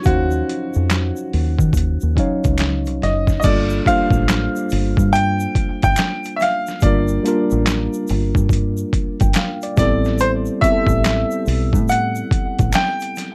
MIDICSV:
0, 0, Header, 1, 6, 480
1, 0, Start_track
1, 0, Key_signature, -2, "minor"
1, 0, Tempo, 845070
1, 34, Time_signature, 4, 2, 24, 8
1, 7582, End_track
2, 0, Start_track
2, 0, Title_t, "Grand piano"
2, 0, Program_c, 0, 0
2, 32, Note_on_c, 0, 66, 89
2, 1450, Note_off_c, 0, 66, 0
2, 1723, Note_on_c, 0, 75, 72
2, 1915, Note_off_c, 0, 75, 0
2, 1929, Note_on_c, 0, 75, 65
2, 1955, Note_on_c, 0, 74, 93
2, 1956, Note_off_c, 0, 75, 0
2, 2199, Note_on_c, 0, 77, 100
2, 2202, Note_off_c, 0, 74, 0
2, 2912, Note_on_c, 0, 79, 111
2, 2938, Note_off_c, 0, 77, 0
2, 3308, Note_off_c, 0, 79, 0
2, 3316, Note_on_c, 0, 79, 102
2, 3589, Note_off_c, 0, 79, 0
2, 3614, Note_on_c, 0, 76, 69
2, 3639, Note_off_c, 0, 76, 0
2, 3648, Note_on_c, 0, 77, 101
2, 3876, Note_on_c, 0, 74, 82
2, 3888, Note_off_c, 0, 77, 0
2, 4572, Note_off_c, 0, 74, 0
2, 5558, Note_on_c, 0, 74, 84
2, 5797, Note_on_c, 0, 72, 95
2, 5803, Note_off_c, 0, 74, 0
2, 5851, Note_off_c, 0, 72, 0
2, 6028, Note_on_c, 0, 76, 99
2, 6756, Note_on_c, 0, 78, 99
2, 6773, Note_off_c, 0, 76, 0
2, 7244, Note_on_c, 0, 79, 99
2, 7249, Note_off_c, 0, 78, 0
2, 7582, Note_off_c, 0, 79, 0
2, 7582, End_track
3, 0, Start_track
3, 0, Title_t, "Tine electric piano"
3, 0, Program_c, 1, 4
3, 0, Control_c, 1, 64, 127
3, 0, Note_on_c, 1, 53, 51
3, 0, Note_on_c, 1, 54, 65
3, 0, Note_on_c, 1, 61, 60
3, 0, Note_on_c, 1, 63, 62
3, 0, Note_on_c, 1, 65, 60
3, 0, Note_on_c, 1, 73, 70
3, 20, Note_on_c, 1, 66, 66
3, 27, Note_off_c, 1, 61, 0
3, 27, Note_on_c, 1, 61, 59
3, 34, Note_off_c, 1, 63, 0
3, 34, Note_on_c, 1, 63, 61
3, 41, Note_on_c, 1, 77, 63
3, 46, Note_on_c, 1, 72, 76
3, 831, Note_off_c, 1, 66, 0
3, 835, Note_off_c, 1, 61, 0
3, 838, Note_off_c, 1, 63, 0
3, 842, Note_off_c, 1, 77, 0
3, 844, Note_off_c, 1, 72, 0
3, 1224, Note_off_c, 1, 54, 0
3, 1224, Note_on_c, 1, 54, 81
3, 1229, Note_on_c, 1, 61, 68
3, 1235, Note_on_c, 1, 63, 72
3, 1244, Note_on_c, 1, 77, 69
3, 1248, Note_off_c, 1, 73, 0
3, 1248, Note_on_c, 1, 73, 85
3, 1848, Note_off_c, 1, 54, 0
3, 1850, Note_off_c, 1, 61, 0
3, 1854, Note_off_c, 1, 63, 0
3, 1858, Note_off_c, 1, 77, 0
3, 1860, Note_off_c, 1, 73, 0
3, 1946, Note_on_c, 1, 55, 69
3, 1951, Note_on_c, 1, 58, 60
3, 1956, Note_on_c, 1, 62, 63
3, 1961, Control_c, 1, 64, 0
3, 1962, Note_off_c, 1, 65, 0
3, 1962, Note_on_c, 1, 65, 67
3, 1964, Note_off_c, 1, 53, 0
3, 1970, Note_on_c, 1, 69, 74
3, 2077, Control_c, 1, 64, 127
3, 2158, Note_off_c, 1, 55, 0
3, 2161, Note_off_c, 1, 58, 0
3, 2163, Note_off_c, 1, 62, 0
3, 2166, Note_off_c, 1, 65, 0
3, 2170, Note_off_c, 1, 69, 0
3, 2185, Note_on_c, 1, 55, 75
3, 2191, Note_on_c, 1, 58, 64
3, 2197, Note_on_c, 1, 62, 64
3, 2203, Note_on_c, 1, 65, 68
3, 2208, Note_on_c, 1, 72, 85
3, 2994, Note_off_c, 1, 55, 0
3, 2997, Note_off_c, 1, 58, 0
3, 3000, Note_off_c, 1, 62, 0
3, 3002, Note_off_c, 1, 65, 0
3, 3005, Note_off_c, 1, 72, 0
3, 3872, Note_on_c, 1, 55, 74
3, 3877, Note_on_c, 1, 58, 67
3, 3887, Note_on_c, 1, 62, 67
3, 3891, Note_on_c, 1, 65, 63
3, 3898, Note_on_c, 1, 70, 84
3, 4081, Note_off_c, 1, 55, 0
3, 4084, Note_off_c, 1, 58, 0
3, 4088, Note_off_c, 1, 62, 0
3, 4090, Note_off_c, 1, 65, 0
3, 4094, Note_off_c, 1, 70, 0
3, 4108, Note_on_c, 1, 55, 73
3, 4114, Note_on_c, 1, 58, 69
3, 4119, Note_on_c, 1, 62, 67
3, 4127, Note_on_c, 1, 65, 69
3, 4135, Note_on_c, 1, 70, 86
3, 4915, Note_off_c, 1, 55, 0
3, 4918, Note_off_c, 1, 58, 0
3, 4921, Note_off_c, 1, 62, 0
3, 4925, Note_off_c, 1, 65, 0
3, 4929, Note_off_c, 1, 70, 0
3, 5230, Note_on_c, 1, 79, 61
3, 5312, Note_off_c, 1, 79, 0
3, 5322, Note_on_c, 1, 77, 79
3, 5462, Note_off_c, 1, 77, 0
3, 5471, Note_on_c, 1, 74, 71
3, 5547, Note_on_c, 1, 55, 88
3, 5553, Note_on_c, 1, 59, 77
3, 5559, Note_on_c, 1, 60, 81
3, 5562, Control_c, 1, 64, 0
3, 5564, Note_on_c, 1, 64, 77
3, 5572, Note_on_c, 1, 69, 84
3, 5648, Control_c, 1, 64, 127
3, 5696, Note_off_c, 1, 74, 0
3, 5967, Note_off_c, 1, 55, 0
3, 5969, Note_off_c, 1, 59, 0
3, 5972, Note_off_c, 1, 60, 0
3, 5975, Note_off_c, 1, 64, 0
3, 5979, Note_off_c, 1, 69, 0
3, 6026, Note_on_c, 1, 55, 75
3, 6031, Note_on_c, 1, 59, 70
3, 6041, Note_on_c, 1, 60, 66
3, 6047, Note_on_c, 1, 64, 68
3, 6053, Note_on_c, 1, 67, 65
3, 6089, Note_on_c, 1, 69, 82
3, 6090, Note_off_c, 1, 67, 0
3, 6834, Note_off_c, 1, 55, 0
3, 6837, Note_off_c, 1, 59, 0
3, 6841, Note_off_c, 1, 60, 0
3, 6845, Note_off_c, 1, 64, 0
3, 6866, Note_off_c, 1, 69, 0
3, 7582, End_track
4, 0, Start_track
4, 0, Title_t, "Fingered electric bass"
4, 0, Program_c, 2, 33
4, 35, Note_on_c, 2, 39, 95
4, 233, Note_off_c, 2, 39, 0
4, 432, Note_on_c, 2, 41, 77
4, 628, Note_off_c, 2, 41, 0
4, 759, Note_on_c, 2, 39, 80
4, 883, Note_off_c, 2, 39, 0
4, 904, Note_on_c, 2, 51, 89
4, 978, Note_off_c, 2, 51, 0
4, 986, Note_on_c, 2, 39, 81
4, 1115, Note_off_c, 2, 39, 0
4, 1153, Note_on_c, 2, 39, 69
4, 1223, Note_off_c, 2, 39, 0
4, 1393, Note_on_c, 2, 37, 80
4, 1631, Note_off_c, 2, 37, 0
4, 1631, Note_on_c, 2, 36, 87
4, 1702, Note_off_c, 2, 36, 0
4, 1722, Note_on_c, 2, 30, 82
4, 1917, Note_off_c, 2, 30, 0
4, 1958, Note_on_c, 2, 31, 94
4, 2155, Note_off_c, 2, 31, 0
4, 2335, Note_on_c, 2, 33, 82
4, 2538, Note_off_c, 2, 33, 0
4, 2684, Note_on_c, 2, 31, 86
4, 2805, Note_off_c, 2, 31, 0
4, 2827, Note_on_c, 2, 43, 103
4, 3099, Note_off_c, 2, 43, 0
4, 3315, Note_on_c, 2, 31, 87
4, 3384, Note_off_c, 2, 31, 0
4, 3879, Note_on_c, 2, 31, 105
4, 4076, Note_off_c, 2, 31, 0
4, 4273, Note_on_c, 2, 33, 81
4, 4469, Note_off_c, 2, 33, 0
4, 4603, Note_on_c, 2, 31, 91
4, 4725, Note_off_c, 2, 31, 0
4, 4746, Note_on_c, 2, 43, 100
4, 5018, Note_off_c, 2, 43, 0
4, 5233, Note_on_c, 2, 31, 87
4, 5303, Note_off_c, 2, 31, 0
4, 5554, Note_on_c, 2, 33, 98
4, 5952, Note_off_c, 2, 33, 0
4, 6175, Note_on_c, 2, 33, 91
4, 6378, Note_off_c, 2, 33, 0
4, 6516, Note_on_c, 2, 35, 97
4, 6666, Note_on_c, 2, 45, 90
4, 6674, Note_off_c, 2, 35, 0
4, 6938, Note_off_c, 2, 45, 0
4, 7154, Note_on_c, 2, 33, 80
4, 7224, Note_off_c, 2, 33, 0
4, 7582, End_track
5, 0, Start_track
5, 0, Title_t, "Muted fingered electric bass strokes"
5, 3156, Note_on_c, 9, 29, 46
5, 3213, Note_off_c, 9, 29, 0
5, 5075, Note_on_c, 9, 29, 49
5, 5132, Note_off_c, 9, 29, 0
5, 6995, Note_on_c, 9, 29, 48
5, 7051, Note_off_c, 9, 29, 0
5, 7582, End_track
6, 0, Start_track
6, 0, Title_t, "Drums"
6, 21, Note_on_c, 9, 82, 54
6, 33, Note_on_c, 9, 36, 99
6, 39, Note_on_c, 9, 42, 73
6, 78, Note_off_c, 9, 82, 0
6, 90, Note_off_c, 9, 36, 0
6, 95, Note_off_c, 9, 42, 0
6, 176, Note_on_c, 9, 82, 40
6, 233, Note_off_c, 9, 82, 0
6, 281, Note_on_c, 9, 42, 57
6, 338, Note_off_c, 9, 42, 0
6, 418, Note_on_c, 9, 82, 40
6, 475, Note_off_c, 9, 82, 0
6, 511, Note_on_c, 9, 26, 58
6, 511, Note_on_c, 9, 82, 58
6, 512, Note_on_c, 9, 42, 80
6, 515, Note_on_c, 9, 39, 75
6, 517, Note_on_c, 9, 38, 93
6, 568, Note_off_c, 9, 26, 0
6, 568, Note_off_c, 9, 82, 0
6, 569, Note_off_c, 9, 42, 0
6, 572, Note_off_c, 9, 39, 0
6, 574, Note_off_c, 9, 38, 0
6, 660, Note_on_c, 9, 82, 39
6, 717, Note_off_c, 9, 82, 0
6, 758, Note_on_c, 9, 46, 41
6, 814, Note_off_c, 9, 46, 0
6, 900, Note_on_c, 9, 36, 79
6, 908, Note_on_c, 9, 82, 47
6, 957, Note_off_c, 9, 36, 0
6, 965, Note_off_c, 9, 82, 0
6, 983, Note_on_c, 9, 36, 89
6, 987, Note_on_c, 9, 82, 61
6, 1007, Note_on_c, 9, 42, 84
6, 1040, Note_off_c, 9, 36, 0
6, 1044, Note_off_c, 9, 82, 0
6, 1064, Note_off_c, 9, 42, 0
6, 1140, Note_on_c, 9, 82, 41
6, 1196, Note_off_c, 9, 82, 0
6, 1231, Note_on_c, 9, 36, 72
6, 1237, Note_on_c, 9, 42, 56
6, 1288, Note_off_c, 9, 36, 0
6, 1294, Note_off_c, 9, 42, 0
6, 1387, Note_on_c, 9, 42, 39
6, 1387, Note_on_c, 9, 82, 44
6, 1390, Note_on_c, 9, 36, 87
6, 1444, Note_off_c, 9, 42, 0
6, 1444, Note_off_c, 9, 82, 0
6, 1447, Note_off_c, 9, 36, 0
6, 1464, Note_on_c, 9, 26, 61
6, 1464, Note_on_c, 9, 42, 74
6, 1464, Note_on_c, 9, 82, 62
6, 1479, Note_on_c, 9, 39, 74
6, 1480, Note_on_c, 9, 38, 85
6, 1521, Note_off_c, 9, 26, 0
6, 1521, Note_off_c, 9, 42, 0
6, 1521, Note_off_c, 9, 82, 0
6, 1536, Note_off_c, 9, 39, 0
6, 1537, Note_off_c, 9, 38, 0
6, 1621, Note_on_c, 9, 82, 32
6, 1631, Note_on_c, 9, 42, 40
6, 1678, Note_off_c, 9, 82, 0
6, 1687, Note_off_c, 9, 42, 0
6, 1717, Note_on_c, 9, 38, 33
6, 1723, Note_on_c, 9, 42, 63
6, 1774, Note_off_c, 9, 38, 0
6, 1780, Note_off_c, 9, 42, 0
6, 1859, Note_on_c, 9, 36, 77
6, 1863, Note_on_c, 9, 82, 42
6, 1874, Note_on_c, 9, 38, 31
6, 1916, Note_off_c, 9, 36, 0
6, 1920, Note_off_c, 9, 82, 0
6, 1931, Note_off_c, 9, 38, 0
6, 1943, Note_on_c, 9, 82, 65
6, 1953, Note_on_c, 9, 49, 88
6, 1954, Note_on_c, 9, 36, 117
6, 1959, Note_on_c, 9, 42, 75
6, 2000, Note_off_c, 9, 82, 0
6, 2010, Note_off_c, 9, 49, 0
6, 2011, Note_off_c, 9, 36, 0
6, 2015, Note_off_c, 9, 42, 0
6, 2100, Note_on_c, 9, 82, 44
6, 2157, Note_off_c, 9, 82, 0
6, 2194, Note_on_c, 9, 36, 88
6, 2201, Note_on_c, 9, 82, 50
6, 2203, Note_on_c, 9, 42, 68
6, 2250, Note_off_c, 9, 36, 0
6, 2258, Note_off_c, 9, 82, 0
6, 2260, Note_off_c, 9, 42, 0
6, 2332, Note_on_c, 9, 36, 104
6, 2343, Note_on_c, 9, 82, 45
6, 2388, Note_off_c, 9, 36, 0
6, 2400, Note_off_c, 9, 82, 0
6, 2435, Note_on_c, 9, 42, 86
6, 2436, Note_on_c, 9, 26, 62
6, 2436, Note_on_c, 9, 82, 64
6, 2438, Note_on_c, 9, 39, 86
6, 2440, Note_on_c, 9, 38, 110
6, 2491, Note_off_c, 9, 42, 0
6, 2493, Note_off_c, 9, 26, 0
6, 2493, Note_off_c, 9, 82, 0
6, 2495, Note_off_c, 9, 39, 0
6, 2496, Note_off_c, 9, 38, 0
6, 2589, Note_on_c, 9, 82, 46
6, 2646, Note_off_c, 9, 82, 0
6, 2667, Note_on_c, 9, 82, 48
6, 2681, Note_on_c, 9, 46, 49
6, 2724, Note_off_c, 9, 82, 0
6, 2737, Note_off_c, 9, 46, 0
6, 2824, Note_on_c, 9, 36, 89
6, 2835, Note_on_c, 9, 82, 52
6, 2880, Note_off_c, 9, 36, 0
6, 2892, Note_off_c, 9, 82, 0
6, 2914, Note_on_c, 9, 82, 66
6, 2928, Note_on_c, 9, 42, 92
6, 2971, Note_off_c, 9, 82, 0
6, 2984, Note_off_c, 9, 42, 0
6, 3066, Note_on_c, 9, 82, 49
6, 3122, Note_off_c, 9, 82, 0
6, 3153, Note_on_c, 9, 36, 87
6, 3157, Note_on_c, 9, 42, 67
6, 3210, Note_off_c, 9, 36, 0
6, 3213, Note_off_c, 9, 42, 0
6, 3308, Note_on_c, 9, 42, 42
6, 3313, Note_on_c, 9, 36, 97
6, 3314, Note_on_c, 9, 82, 50
6, 3364, Note_off_c, 9, 42, 0
6, 3369, Note_off_c, 9, 36, 0
6, 3371, Note_off_c, 9, 82, 0
6, 3386, Note_on_c, 9, 26, 65
6, 3386, Note_on_c, 9, 42, 89
6, 3386, Note_on_c, 9, 82, 74
6, 3400, Note_on_c, 9, 39, 78
6, 3402, Note_on_c, 9, 38, 101
6, 3443, Note_off_c, 9, 26, 0
6, 3443, Note_off_c, 9, 42, 0
6, 3443, Note_off_c, 9, 82, 0
6, 3457, Note_off_c, 9, 39, 0
6, 3459, Note_off_c, 9, 38, 0
6, 3543, Note_on_c, 9, 82, 38
6, 3553, Note_on_c, 9, 42, 48
6, 3600, Note_off_c, 9, 82, 0
6, 3610, Note_off_c, 9, 42, 0
6, 3633, Note_on_c, 9, 82, 44
6, 3640, Note_on_c, 9, 38, 40
6, 3646, Note_on_c, 9, 42, 68
6, 3690, Note_off_c, 9, 82, 0
6, 3697, Note_off_c, 9, 38, 0
6, 3703, Note_off_c, 9, 42, 0
6, 3787, Note_on_c, 9, 82, 46
6, 3797, Note_on_c, 9, 38, 36
6, 3844, Note_off_c, 9, 82, 0
6, 3853, Note_off_c, 9, 38, 0
6, 3865, Note_on_c, 9, 82, 61
6, 3876, Note_on_c, 9, 36, 107
6, 3878, Note_on_c, 9, 42, 79
6, 3922, Note_off_c, 9, 82, 0
6, 3932, Note_off_c, 9, 36, 0
6, 3935, Note_off_c, 9, 42, 0
6, 4020, Note_on_c, 9, 82, 43
6, 4077, Note_off_c, 9, 82, 0
6, 4122, Note_on_c, 9, 42, 66
6, 4122, Note_on_c, 9, 82, 49
6, 4178, Note_off_c, 9, 42, 0
6, 4179, Note_off_c, 9, 82, 0
6, 4263, Note_on_c, 9, 82, 47
6, 4320, Note_off_c, 9, 82, 0
6, 4352, Note_on_c, 9, 42, 94
6, 4356, Note_on_c, 9, 39, 86
6, 4357, Note_on_c, 9, 38, 102
6, 4358, Note_on_c, 9, 26, 66
6, 4358, Note_on_c, 9, 82, 62
6, 4409, Note_off_c, 9, 42, 0
6, 4413, Note_off_c, 9, 39, 0
6, 4414, Note_off_c, 9, 38, 0
6, 4415, Note_off_c, 9, 26, 0
6, 4415, Note_off_c, 9, 82, 0
6, 4505, Note_on_c, 9, 82, 46
6, 4562, Note_off_c, 9, 82, 0
6, 4587, Note_on_c, 9, 82, 47
6, 4598, Note_on_c, 9, 46, 47
6, 4644, Note_off_c, 9, 82, 0
6, 4654, Note_off_c, 9, 46, 0
6, 4742, Note_on_c, 9, 36, 89
6, 4753, Note_on_c, 9, 82, 52
6, 4799, Note_off_c, 9, 36, 0
6, 4809, Note_off_c, 9, 82, 0
6, 4824, Note_on_c, 9, 36, 93
6, 4828, Note_on_c, 9, 82, 65
6, 4845, Note_on_c, 9, 42, 88
6, 4881, Note_off_c, 9, 36, 0
6, 4885, Note_off_c, 9, 82, 0
6, 4902, Note_off_c, 9, 42, 0
6, 4983, Note_on_c, 9, 82, 49
6, 5040, Note_off_c, 9, 82, 0
6, 5071, Note_on_c, 9, 36, 86
6, 5075, Note_on_c, 9, 42, 64
6, 5128, Note_off_c, 9, 36, 0
6, 5132, Note_off_c, 9, 42, 0
6, 5224, Note_on_c, 9, 42, 45
6, 5230, Note_on_c, 9, 36, 98
6, 5233, Note_on_c, 9, 82, 52
6, 5281, Note_off_c, 9, 42, 0
6, 5287, Note_off_c, 9, 36, 0
6, 5289, Note_off_c, 9, 82, 0
6, 5301, Note_on_c, 9, 42, 81
6, 5306, Note_on_c, 9, 26, 69
6, 5306, Note_on_c, 9, 82, 68
6, 5316, Note_on_c, 9, 39, 82
6, 5317, Note_on_c, 9, 38, 102
6, 5358, Note_off_c, 9, 42, 0
6, 5362, Note_off_c, 9, 26, 0
6, 5362, Note_off_c, 9, 82, 0
6, 5373, Note_off_c, 9, 39, 0
6, 5374, Note_off_c, 9, 38, 0
6, 5463, Note_on_c, 9, 82, 39
6, 5470, Note_on_c, 9, 42, 48
6, 5520, Note_off_c, 9, 82, 0
6, 5526, Note_off_c, 9, 42, 0
6, 5549, Note_on_c, 9, 82, 46
6, 5552, Note_on_c, 9, 36, 111
6, 5555, Note_on_c, 9, 38, 38
6, 5561, Note_on_c, 9, 42, 72
6, 5606, Note_off_c, 9, 82, 0
6, 5609, Note_off_c, 9, 36, 0
6, 5612, Note_off_c, 9, 38, 0
6, 5618, Note_off_c, 9, 42, 0
6, 5706, Note_on_c, 9, 82, 48
6, 5714, Note_on_c, 9, 38, 35
6, 5763, Note_off_c, 9, 82, 0
6, 5771, Note_off_c, 9, 38, 0
6, 5785, Note_on_c, 9, 82, 64
6, 5797, Note_on_c, 9, 42, 77
6, 5842, Note_off_c, 9, 82, 0
6, 5854, Note_off_c, 9, 42, 0
6, 5938, Note_on_c, 9, 82, 44
6, 5995, Note_off_c, 9, 82, 0
6, 6033, Note_on_c, 9, 36, 95
6, 6040, Note_on_c, 9, 82, 52
6, 6042, Note_on_c, 9, 42, 66
6, 6089, Note_off_c, 9, 36, 0
6, 6097, Note_off_c, 9, 82, 0
6, 6099, Note_off_c, 9, 42, 0
6, 6172, Note_on_c, 9, 36, 103
6, 6182, Note_on_c, 9, 82, 48
6, 6229, Note_off_c, 9, 36, 0
6, 6239, Note_off_c, 9, 82, 0
6, 6273, Note_on_c, 9, 26, 64
6, 6273, Note_on_c, 9, 82, 65
6, 6276, Note_on_c, 9, 42, 87
6, 6280, Note_on_c, 9, 39, 83
6, 6281, Note_on_c, 9, 38, 104
6, 6330, Note_off_c, 9, 26, 0
6, 6330, Note_off_c, 9, 82, 0
6, 6333, Note_off_c, 9, 42, 0
6, 6337, Note_off_c, 9, 39, 0
6, 6338, Note_off_c, 9, 38, 0
6, 6424, Note_on_c, 9, 82, 49
6, 6481, Note_off_c, 9, 82, 0
6, 6509, Note_on_c, 9, 82, 45
6, 6522, Note_on_c, 9, 46, 50
6, 6566, Note_off_c, 9, 82, 0
6, 6579, Note_off_c, 9, 46, 0
6, 6662, Note_on_c, 9, 36, 85
6, 6672, Note_on_c, 9, 82, 55
6, 6719, Note_off_c, 9, 36, 0
6, 6729, Note_off_c, 9, 82, 0
6, 6749, Note_on_c, 9, 82, 67
6, 6768, Note_on_c, 9, 42, 92
6, 6806, Note_off_c, 9, 82, 0
6, 6825, Note_off_c, 9, 42, 0
6, 6903, Note_on_c, 9, 82, 49
6, 6960, Note_off_c, 9, 82, 0
6, 6993, Note_on_c, 9, 36, 91
6, 7000, Note_on_c, 9, 42, 68
6, 7049, Note_off_c, 9, 36, 0
6, 7056, Note_off_c, 9, 42, 0
6, 7148, Note_on_c, 9, 42, 43
6, 7152, Note_on_c, 9, 36, 99
6, 7154, Note_on_c, 9, 82, 46
6, 7205, Note_off_c, 9, 42, 0
6, 7209, Note_off_c, 9, 36, 0
6, 7211, Note_off_c, 9, 82, 0
6, 7228, Note_on_c, 9, 26, 72
6, 7228, Note_on_c, 9, 42, 84
6, 7228, Note_on_c, 9, 82, 73
6, 7243, Note_on_c, 9, 39, 83
6, 7244, Note_on_c, 9, 38, 110
6, 7285, Note_off_c, 9, 26, 0
6, 7285, Note_off_c, 9, 42, 0
6, 7285, Note_off_c, 9, 82, 0
6, 7299, Note_off_c, 9, 39, 0
6, 7301, Note_off_c, 9, 38, 0
6, 7384, Note_on_c, 9, 82, 40
6, 7396, Note_on_c, 9, 42, 48
6, 7441, Note_off_c, 9, 82, 0
6, 7453, Note_off_c, 9, 42, 0
6, 7474, Note_on_c, 9, 82, 45
6, 7482, Note_on_c, 9, 38, 39
6, 7488, Note_on_c, 9, 42, 74
6, 7531, Note_off_c, 9, 82, 0
6, 7539, Note_off_c, 9, 38, 0
6, 7545, Note_off_c, 9, 42, 0
6, 7582, End_track
0, 0, End_of_file